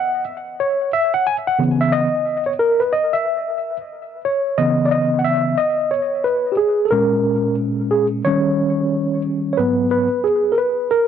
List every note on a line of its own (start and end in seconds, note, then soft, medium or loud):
0.00 0.24 F#5 medium
0.60 0.91 C#5 medium
0.93 1.12 E5 medium
1.14 1.26 F#5 medium
1.27 1.36 G#5 loud
1.47 1.62 F#5 medium
1.59 2.07 C#3 medium
1.59 2.07 E3 medium
1.59 2.07 B3 medium
1.81 1.93 E5 medium
1.92 2.43 D#5 loud
2.46 2.52 C#5 medium
2.59 2.81 A#4 medium
2.80 2.92 B4 medium
2.93 3.14 D#5 medium
3.13 3.76 E5 medium
4.25 4.60 C#5 medium
4.58 5.55 C#3 medium
4.58 5.55 E3 soft
4.58 5.55 B3 medium
4.58 4.88 D#5 medium
4.85 4.92 D5 medium
4.91 5.18 D#5 medium
5.19 5.25 F#5 medium
5.25 5.60 E5 loud
5.58 5.93 D#5 loud
5.91 6.26 C#5 medium
6.24 6.54 B4 medium
6.52 6.58 G4 medium
6.57 6.87 G#4 medium
6.85 6.92 A4 medium
6.91 8.21 A#2 medium
6.91 8.22 G#3 soft
6.91 8.22 C#4 medium
6.91 7.54 A#4 medium
7.91 8.06 G#4 medium
8.25 9.55 D#3 medium
8.25 9.55 G3 soft
8.25 9.56 C#4 medium
8.25 9.21 C#5 loud
9.53 9.59 C#5 medium
9.57 10.06 G#2 medium
9.57 10.07 F#3 soft
9.57 10.07 B3 medium
9.57 9.89 B4 medium
9.91 10.26 B4 medium
10.24 10.54 G#4 medium
10.52 10.58 A#4 medium
10.58 10.89 B4 medium
10.91 11.08 A#4 medium